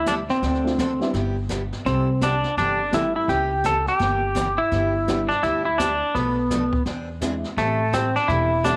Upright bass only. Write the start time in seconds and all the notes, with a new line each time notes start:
Already playing: D2
0.42 D2
1.14 G1
1.85 C2
2.57 G1
3.28 C#2
4.00 G1
4.72 G1
5.43 D2
6.15 B1
6.86 E2
7.57 A1
8.28 E1